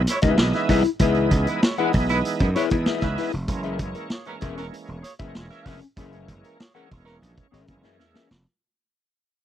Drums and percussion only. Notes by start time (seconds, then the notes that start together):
0.07 snare, closed hi-hat
0.22 kick, closed hi-hat
0.38 snare
0.53 snare, closed hi-hat
0.69 kick, snare, open hi-hat
0.84 closed hi-hat
0.99 kick, closed hi-hat
1.14 closed hi-hat
1.31 kick, closed hi-hat
1.47 closed hi-hat
1.63 snare
1.78 closed hi-hat
1.93 kick, open hi-hat
2.09 snare, closed hi-hat
2.25 closed hi-hat
2.39 kick, closed hi-hat
2.55 snare, closed hi-hat
2.70 kick, closed hi-hat
2.86 snare
3.01 kick, snare, closed hi-hat
3.17 snare, open hi-hat
3.32 closed hi-hat
3.48 kick, closed hi-hat
3.63 closed hi-hat
3.79 kick, closed hi-hat
3.95 closed hi-hat
4.10 snare
4.25 closed hi-hat
4.41 kick, closed hi-hat
4.57 snare, closed hi-hat
4.74 closed hi-hat
4.87 closed hi-hat
5.04 snare, closed hi-hat
5.19 kick, closed hi-hat
5.35 snare
5.50 snare, closed hi-hat
5.66 kick, snare, open hi-hat
5.81 closed hi-hat
5.97 kick, closed hi-hat
6.12 closed hi-hat
6.28 kick, closed hi-hat
6.44 closed hi-hat
6.60 snare
6.76 closed hi-hat
6.91 kick, open hi-hat
7.07 snare, closed hi-hat
7.23 closed hi-hat
7.37 kick, closed hi-hat
7.54 snare, closed hi-hat
7.67 kick, closed hi-hat
7.84 snare
8.00 snare
8.15 snare
8.31 snare